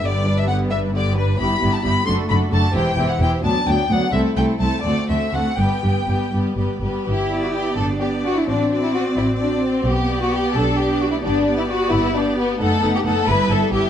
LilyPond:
<<
  \new Staff \with { instrumentName = "Violin section" } { \time 6/8 \key g \major \tempo 4. = 87 d''8. e''16 fis''8 e''8 d''8 b'8 | b''8. a''16 b''8 c'''8 b''8 a''8 | g''8. fis''16 g''8 a''8 g''8 fis''8 | e''8 g''8 a''8 d''8 e''8 fis''8 |
g''4. r4. | r8 d''4. d''4 | d''8 d''4. d''4 | r8 d''4. d''4 |
d''8 d''4. d''4 | \key e \minor fis''8 fis''8 fis''8 e''8 e''8 e''8 | }
  \new Staff \with { instrumentName = "Violin section" } { \time 6/8 \key g \major <b g'>8 <d' b'>8 <b g'>8 <d' b'>8 <b g'>8 <d' b'>8 | <e' g'>8 <e' g'>8 <e' g'>8 <fis' a'>8 <fis' a'>8 <fis' a'>8 | <g' c''>8 <g' c''>8 <g' c''>8 <d' d''>8 <d' d''>8 <d' d''>8 | <e' a'>8 <e' a'>8 <e' a'>8 <fis' a'>8 <fis' a'>8 <fis' a'>8 |
<g' b'>8 <g' b'>8 <g' b'>8 <g' b'>8 <g' b'>8 <g' b'>8 | g'8. fis'16 g'8 a'8 g'8 fis'16 e'16 | d'8. e'16 fis'8 e'8 d'8 c'8 | g'8. fis'16 g'8 a'8 g'8 fis'16 e'16 |
d'8. e'16 fis'8 e'8 d'8 b8 | \key e \minor a'8. g'16 a'8 b'8 a'8 g'8 | }
  \new Staff \with { instrumentName = "Viola section" } { \time 6/8 \key g \major <d b>8 <g d'>8 <d b>8 <g d'>8 <d b>8 <g d'>8 | <g b>8 <g b>8 <g b>8 <a d'>8 <a d'>8 <a d'>8 | <e e'>8 <e e'>8 <e e'>8 <fis b>8 <fis b>8 <fis b>8 | <a c'>8 <a c'>8 <a c'>8 <a c'>8 <a c'>8 <a c'>8 |
<g b>8 <g b>8 <g b>8 <g b>8 <g b>8 <g b>8 | r8 <b g'>4. <b g'>4 | <c' fis'>8 <c' fis'>4. <c' fis'>4 | r8 <b g'>4. <b g'>4 |
<b g'>8 <b g'>4. <b g'>4 | \key e \minor <b dis'>8 <b dis'>8 <b dis'>8 <b e'>8 <b e'>8 <b e'>8 | }
  \new Staff \with { instrumentName = "Cello section" } { \clef bass \time 6/8 \key g \major g,2. | g,8 g,8 g,8 fis,8 fis,8 fis,8 | e,8 e,8 e,8 d,8 d,8 d,8 | c,8 c,8 c,8 d,8 d,8 d,8 |
g,8 g,8 g,8 g,8 g,8 g,8 | e'4. d'4. | c'2. | b4. d'4. |
b2. | \key e \minor a4. g4. | }
  \new Staff \with { instrumentName = "Double bass section" } { \clef bass \time 6/8 \key g \major g,,2. | g,,8 g,,8 g,,8 fis,,8 fis,,8 fis,,8 | e,,8 e,,8 e,,8 d,8 d,8 d,8 | c,8 c,8 c,8 d,8 d,8 d,8 |
g,,8 g,,8 g,,8 g,,8 g,,8 g,,8 | g,,4. g,,4. | a,,4. a,,4. | b,,4. b,,4. |
g,,4. g,,4. | \key e \minor fis,,8 fis,,8 fis,,8 g,,8 g,,8 g,,8 | }
>>